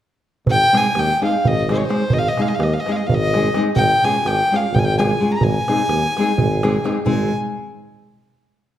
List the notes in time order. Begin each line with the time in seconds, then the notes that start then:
0.46 G#1, darbuka dum
0.51 G5
0.61 darbuka tek
0.73 G#3 C4 D#4 G#4, darbuka tek
0.77 G#5
0.85 darbuka tek
0.95 D#2, darbuka tek
0.99 G5
1.09 darbuka tek
1.21 G#3 C4 D#4 G#4, darbuka tek
1.25 F5
1.35 darbuka tek
1.45 G#1 D#5, darbuka dum
1.57 darbuka tek
1.69 G#3 C4 D#4 G#4, darbuka tek
1.73 C5
1.78 C#5
1.85 C5
1.89 G#3 C4 D#4 G#4, darbuka tek
2.02 darbuka tek
2.10 G#1 D#5, darbuka dum
2.19 F5
2.25 D#5, darbuka tek
2.37 G#3 C4 D#4 G#4, darbuka tek
2.42 F5
2.48 D#5
2.55 D#2 F5
2.60 D#5, darbuka tek
2.74 F5, darbuka tek
2.80 D#5
2.86 G#3 C4 D#4 G#4, darbuka tek
2.92 F5
2.96 D#5, darbuka tek
3.07 G#1 F5, darbuka dum
3.14 D#5
3.22 darbuka tek
3.34 G#3 C4 D#4 G#4, darbuka tek
3.54 G#3 C4 D#4 G#4, darbuka tek
3.66 darbuka tek
3.75 G#1 G5, darbuka dum
3.92 darbuka tek
4.04 G#3 C#4 F4 G#4 G#5, darbuka tek
4.15 darbuka tek
4.23 G#1 G5, darbuka tek
4.51 G#3 C#4 F4 G#4, darbuka tek
4.56 F5
4.66 darbuka tek
4.72 G#1 G5, darbuka dum
4.79 G#5
4.85 G5, darbuka tek
4.98 G#3 C#4 F4 G#4 G#5, darbuka tek
5.20 G#3 C#4 F4 G#4
5.33 A#5, darbuka tek
5.40 G#1 G#5, darbuka dum
5.54 darbuka tek
5.68 G#3 C4 D#4 G#4, darbuka tek
5.79 darbuka tek
5.88 D#2, darbuka tek
6.04 darbuka tek
6.17 G#3 C4 D#4 G#4, darbuka tek
6.28 darbuka tek
6.37 G#1, darbuka dum
6.52 darbuka tek
6.63 G#3 C4 D#4 G#4, darbuka tek
6.84 G#3 C4 D#4 G#4, darbuka tek
7.05 G#1 G#3 C4 D#4 G#4 G#5, darbuka dum